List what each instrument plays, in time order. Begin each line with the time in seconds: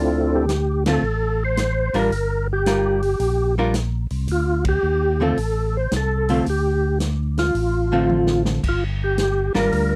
Already playing: tonewheel organ D2 D3 C4 E4 F4 A4
0.24 tonewheel organ F4
0.35 tonewheel organ G4
0.49 snare, closed hi-hat
0.86 hollow-body jazz guitar D3 A3 C4 F4, tonewheel organ A4, snare, ride
1.02 tonewheel organ A1
1.45 tonewheel organ C5
1.57 snare, closed hi-hat
1.94 tonewheel organ A1, hollow-body jazz guitar G3 D4 F4 A#4, open hi-hat
1.99 tonewheel organ A#4
2.11 tonewheel organ G1, open hi-hat
2.53 tonewheel organ G4
2.66 hollow-body jazz guitar G3 D4 F4 A#4, snare, closed hi-hat
3.02 open hi-hat
3.20 tonewheel organ A#1, open hi-hat
3.58 hollow-body jazz guitar G3 D4 F4 A#4
3.74 snare, closed hi-hat
4.10 tonewheel organ C2, open hi-hat
4.28 tonewheel organ D2 F4, open hi-hat
4.65 kick, ride
4.69 tonewheel organ G4
4.83 tonewheel organ D#2
5.20 hollow-body jazz guitar D3 A3 C4 F4, tonewheel organ A4
5.37 tonewheel organ A1, open hi-hat
5.77 tonewheel organ C5
5.92 tonewheel organ C2, snare, closed hi-hat
5.97 tonewheel organ A4
6.29 hollow-body jazz guitar D3 A3 C4 F4, open hi-hat
6.46 tonewheel organ D2 G4, open hi-hat
7.00 snare, closed hi-hat
7.37 tonewheel organ F4, snare, open hi-hat
7.55 tonewheel organ A1, open hi-hat
7.92 hollow-body jazz guitar D3 A3 C4 F4
8.10 high tom
8.27 snare
8.46 snare
8.63 tonewheel organ G1, kick, crash
8.69 tonewheel organ F4
9.04 tonewheel organ G4
9.18 snare, closed hi-hat
9.54 tonewheel organ G#1, hollow-body jazz guitar G3 D4 F4 A#4, snare, open hi-hat
9.59 tonewheel organ A#4
9.72 tonewheel organ D2, open hi-hat